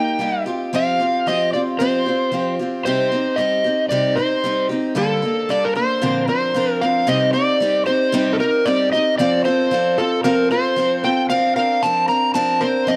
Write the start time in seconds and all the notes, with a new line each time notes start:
Already playing: A#3 D#4 G4 G5
0.19 G3 A#3 D#4 G4
0.46 C4 F4 G4
0.73 F3 C4 F4 G4 F5
1.00 C4 F4 G4
1.27 F3 C4 F4 G4 D#5
1.53 C4 F4 G4 D5
1.79 F3 C4 F4 G4 C5
2.06 C4 F4 G4
2.32 F3 C4 F4 G4
2.59 C4 F4 G4
2.85 C3 G3 C4 D#4 G4 C5
3.12 C4 D#4 G4
3.36 G3 C4 D#4 D#5
3.41 G4
3.64 C4 D#4 G4
3.89 C3 G3 C4 D#4 G4 D5
4.16 C4 D#4 G4 C5
4.44 G3 C4 D#4 G4
4.69 C4 D#4 G4
4.95 D3 G3 A#3 D4 A4
5.22 A#3 D4 A4
5.49 G3 A#3 D4 A4 D5
5.65 A#4
5.75 A#3 D4 A4 C5
6.02 A#2 D3 F3 C4 D4 A#4
6.28 F3 C4 D4 A#4 C5
6.54 F3 C4 D4 A#4
6.72 A#4
6.81 F3 C4 D4 A#4 F5
7.07 C3 G3 C4 D#4 G4 D#5
7.33 C4 D#4 G4 D5
7.60 G3 C4 D#4 G4
7.86 C4 D#4 G4 C5
8.12 C3 G3 C4 D#4 G4
8.33 A4
8.40 C4 D#4 G4 A#4
8.66 G3 C4 D#4 G4 D5
8.93 C4 D#4 G4 D#5
9.18 F3 C4 F4 A4 D5
9.45 C4 F4 A4 C5
9.71 F3 C4 F4 A4
9.98 C4 F4 A4
10.24 F3 C4 F4 A4 A#4
10.51 C4 F4 A4 C5
10.76 F3 C4 F4 A4
11.04 C4 F4 A4 G5
11.30 F3 C4 D4 A#4 F5
11.56 C4 D4 A#4 F5
11.83 F3 C4 D4 A#4 A5
12.08 C4 D4 A#4 A#5
12.34 F3 C4 D4 A#4 A5
12.61 C4 D4 A#4 C5
12.87 F3 C4 D4 A#4 D#5